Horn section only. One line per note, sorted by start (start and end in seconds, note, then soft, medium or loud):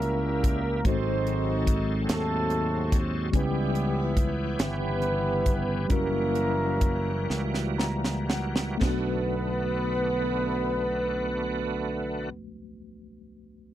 0.00 0.81 A#3 medium
0.00 0.82 C#4 medium
0.00 0.82 E4 medium
0.00 0.81 A#4 medium
0.86 1.68 C4 loud
0.86 2.06 D#4 medium
0.86 2.06 F#4 medium
0.86 1.68 C5 loud
2.10 2.99 A3 medium
2.10 3.30 C4 medium
2.10 3.30 F#4 medium
2.10 2.99 A4 medium
3.35 4.14 G3 medium
3.35 4.56 B3 medium
3.35 4.57 E4 medium
3.35 4.14 G4 medium
4.60 5.87 B3 medium
4.60 5.87 E4 medium
4.60 5.87 G4 medium
4.60 5.87 B4 loud
5.92 7.79 A#3 medium
5.92 7.76 C#4 medium
5.92 7.76 E4 medium
5.92 7.79 A#4 loud
8.82 12.32 B3 medium
8.82 12.32 B4 medium